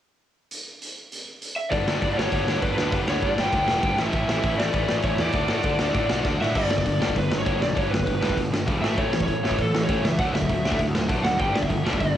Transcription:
0.51 closed hi-hat
0.82 closed hi-hat
1.12 closed hi-hat
1.42 closed hi-hat
1.56 E5
1.71 G1 G2 D3 G3 B3 D4 D5, kick, open hi-hat
1.86 G1 D3 G3 B3 D4, snare
1.90 G2
2.02 G1 G2 D3 G3 B3 D4, kick, open hi-hat
2.17 G1 G2 D3 G3 B3 D4 C#5, snare
2.32 G1 G2 D3 G3 B3 D4, kick, open hi-hat
2.46 G1 G3 B3 D4, snare
2.50 G2 D3
2.62 G1 G2 D3 G3 B3 D4 B4, kick, open hi-hat
2.77 D2 G2 D3 G3 B3 D4 B4, snare
2.92 G1 G2 D3 G3 B3 B4, kick, open hi-hat
2.96 D4
3.07 D2 G2 D3 G3 B3 D4 C#5, snare
3.21 G2 D3 G3 B3 D4 D5, kick, open hi-hat
3.36 G1 G2 D3 G3 B3 D4 G5, snare
3.52 D2 G2 D3 G3 B3 D4, kick, open hi-hat
3.67 E1 G2 D3 G3 B3 D4, snare
3.83 G1 G2 D3 G3 B3 D4, kick, open hi-hat
3.97 A1 A2 E3 A3 C#4 E4 E5, snare
4.12 A1 C#4 E4, kick, open hi-hat
4.16 A2 E3 A3
4.29 A1 A2 E3 A3 C#4 E4, snare
4.43 A1 E3 A3 C#4 E4, kick, open hi-hat
4.48 A2
4.58 A1 A2 E3 A3 C#4 E4 D5, snare
4.73 A1 A2 E3 A3 C#4 E4, kick, open hi-hat
4.89 A1 A2 E3 A3 C#4 E4, snare
5.02 A1 E3 A3 C#4 E4 C#5, kick, open hi-hat
5.07 A2
5.18 E2 A2 E3 A3 C#4 E4 D5, snare
5.32 D2 D3 A3 D4 F#4, kick, open hi-hat
5.48 A2 D3 A3 D4 F#4, snare
5.63 D3 A3 D4 F#4, kick, open hi-hat
5.78 D2 D3 A3 D4 F#4, snare
5.93 A2 D3 A3 D4 F#4, kick, open hi-hat
6.09 B1 D3 A3 D4 F#4, snare
6.24 D2 D3 A3 D4 F#4, kick, snare
6.39 A2 D3 A3 D4 F#4 E5, snare
6.54 G1 G2 D3 G3 D5, kick, crash
6.70 G1 G2 D3, snare
6.78 D5, kick
6.86 G1 G2 D3, kick, open hi-hat
7.00 G1 G2 D3 G3, snare
7.09 kick
7.16 G1 G2 D3 B4, kick, open hi-hat
7.31 G1 G2 D3, snare
7.40 C#5
7.45 G1 G2 D3 G3, kick, open hi-hat
7.62 B1 G2 D3 D5, snare
7.75 G1 G2 D3 G3 C#5, kick, open hi-hat
7.91 G1 G2 D3 B4, snare
8.00 kick
8.06 G1 G2 D3, kick, open hi-hat
8.21 G1 G2 D3 G3, snare
8.29 kick
8.37 G1 G2 D3, kick, open hi-hat
8.53 G1 G2 D3, snare
8.66 E1 G2 D3 G3, kick, open hi-hat
8.82 A1 A2 E3 A3 E5, snare
8.97 A1 A2 E3 A3 C#5, kick, open hi-hat
9.12 A1 A2 E3, snare
9.20 C#5, kick
9.28 A1 A2 E3, kick, open hi-hat
9.43 A1 A2 E3 A3, snare
9.51 kick
9.58 A1 A2 E3 A4, kick, open hi-hat
9.74 A1 A2 E3, snare
9.83 C#5
9.89 A1 A2 E3 A3, kick, open hi-hat
10.04 C#2 A2 E3 E5, snare
10.19 D2 D3 F#3 A3 D4 F#5, kick, open hi-hat
10.34 D2 D3 F#3 A3 E5, snare
10.42 kick
10.49 D2 D3 F#3 A3, kick, open hi-hat
10.65 D2 D3 F#3 A3 D4, snare
10.72 kick
10.79 D2 D3 F#3 A3, kick, open hi-hat
10.95 D2 D3 F#3 A3, snare
11.08 B1 D3 F#3 A3 D4, kick, open hi-hat
11.24 D2 D3 F#3 A3 F#5, snare
11.39 G1 G2 D3 G3 G5, kick, open hi-hat
11.53 G1 G2 D3 D5, snare
11.62 E5, kick
11.68 G1 G2 D3, kick, open hi-hat
11.84 G1 G2 D3 G3, snare
11.93 kick
12.00 G1 G2 D3 D5, kick, open hi-hat

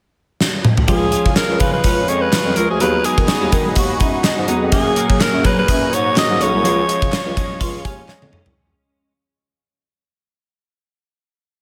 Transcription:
0.41 snare
0.65 mid tom
0.77 floor tom
0.87 C#2 F3 G#3 C#4 G#4 C#5 F5 C#6, kick, closed hi-hat
1.12 F3, closed hi-hat
1.25 C#3, kick
1.36 G#3 A#4, snare, clap, closed hi-hat
1.50 C#2
1.60 C#3 F3 B4, kick, closed hi-hat
1.73 B4
1.84 C#2 C#4, kick, closed hi-hat
2.08 F2 G#3 C#5, closed hi-hat
2.21 B4
2.33 F3, snare, clap, closed hi-hat
2.46 F2
2.56 C#2 G#3 A#4, closed hi-hat
2.70 D2 G#4
2.80 D#2 D#3 F#3 B3 D#4 G#4 B4 D#5 F#5 B5, closed hi-hat
3.04 G#3 G#4, closed hi-hat
3.18 D#3, kick
3.28 C#4, snare, clap, closed hi-hat
3.42 D#2 D#4
3.52 D#3 G#3, kick, closed hi-hat
3.75 D#2 F#4, kick, closed hi-hat
4.00 F#2 D#4, kick, closed hi-hat
4.24 G#3 D#5, snare, clap, closed hi-hat
4.38 G#2
4.48 E2 F#3 B3 D#4 G#4, closed hi-hat
4.62 F2
4.71 F#2 A#2 F#3 A#3 C#4 G#4 C#5 A#5, kick, closed hi-hat
4.96 A#3, closed hi-hat
5.10 F#3, kick
5.21 C#4 A#4, snare, clap, closed hi-hat
5.34 F#2
5.44 F#3 A#3 B4, kick, closed hi-hat
5.59 B4
5.68 F#2 G#4, kick, closed hi-hat
5.93 G#2 C#4 C#5, closed hi-hat
6.16 F#3 A#3 C#4 G#4 D#5, snare, clap, closed hi-hat
6.30 G#2
6.40 B1 C#4 C#5, closed hi-hat
6.54 C2
6.63 C#2 F3 G#3 C#4 G#4 F5 C#6, closed hi-hat
6.88 G#3, closed hi-hat
7.02 C#3, kick
7.12 C#4, snare, clap, closed hi-hat
7.26 C#2
7.36 G#3, kick, closed hi-hat
7.60 C#2 F4, kick, closed hi-hat
7.84 D#2 C#4 G#5, kick, closed hi-hat
8.08 G#3 C#5, snare, clap
8.22 F2, high tom
8.32 B1 C#4, mid tom
8.45 C2, floor tom

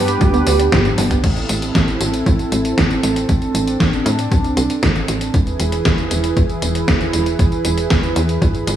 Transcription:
Already playing: G2 B3 D4 G4 B4
0.08 B3, closed hi-hat, tambourine
0.21 D2 G3 G4 B4, kick, closed hi-hat, tambourine
0.34 B3, closed hi-hat, tambourine
0.47 D2, open hi-hat, tambourine
0.59 D4, closed hi-hat, tambourine
0.72 G1 G4, kick, snare, closed hi-hat, high tom, tambourine
0.85 closed hi-hat, high tom, tambourine
0.98 G1 D4, open hi-hat, tambourine
1.11 B3, closed hi-hat, mid tom, tambourine
1.24 A1 C4 E4 A4, kick, closed hi-hat, crash, tambourine
1.37 closed hi-hat, tambourine
1.49 A1, closed hi-hat, tambourine
1.62 closed hi-hat, tambourine
1.75 A1, kick, snare, closed hi-hat, tambourine
1.88 closed hi-hat, tambourine
2.01 A1, closed hi-hat, tambourine
2.14 closed hi-hat, tambourine
2.26 A1, kick, closed hi-hat, tambourine
2.39 closed hi-hat, tambourine
2.52 A1, closed hi-hat, tambourine
2.65 closed hi-hat, tambourine
2.78 A1, kick, snare, closed hi-hat, tambourine
2.91 closed hi-hat, tambourine
3.03 A1, closed hi-hat, tambourine
3.16 closed hi-hat, tambourine
3.29 A1 D4, kick, closed hi-hat, tambourine
3.42 closed hi-hat, tambourine
3.54 A1, closed hi-hat, tambourine
3.67 closed hi-hat, tambourine
3.80 A1, kick, snare, closed hi-hat, tambourine
3.93 closed hi-hat, tambourine
4.06 A2, closed hi-hat, tambourine
4.19 closed hi-hat, tambourine
4.32 C2, kick, closed hi-hat, tambourine
4.44 closed hi-hat, tambourine
4.57 C2, closed hi-hat, tambourine
4.70 closed hi-hat, tambourine
4.83 A1, kick, snare, closed hi-hat, tambourine
4.96 closed hi-hat, tambourine
5.08 A1, closed hi-hat, tambourine
5.21 closed hi-hat, tambourine
5.34 E1 E3 E4 G#4 B4, kick, closed hi-hat, tambourine
5.47 closed hi-hat, tambourine
5.60 E1, closed hi-hat, tambourine
5.72 closed hi-hat, tambourine
5.85 E1, kick, snare, closed hi-hat, tambourine
5.98 closed hi-hat, tambourine
6.11 E1, closed hi-hat, tambourine
6.24 closed hi-hat, tambourine
6.37 E1, kick, closed hi-hat, tambourine
6.50 closed hi-hat, tambourine
6.62 E1, closed hi-hat, tambourine
6.75 closed hi-hat, tambourine
6.88 E1, kick, snare, closed hi-hat, tambourine
7.01 closed hi-hat, tambourine
7.13 E1, closed hi-hat, tambourine
7.26 closed hi-hat, tambourine
7.39 E1, kick, closed hi-hat, tambourine
7.52 closed hi-hat, tambourine
7.65 E1, closed hi-hat, tambourine
7.78 closed hi-hat, tambourine
7.90 E1, kick, snare, closed hi-hat, tambourine
8.03 closed hi-hat, tambourine
8.16 E2, closed hi-hat, tambourine
8.29 closed hi-hat, tambourine
8.42 G#1, kick, closed hi-hat, tambourine
8.55 closed hi-hat, tambourine
8.67 G#1, closed hi-hat, tambourine

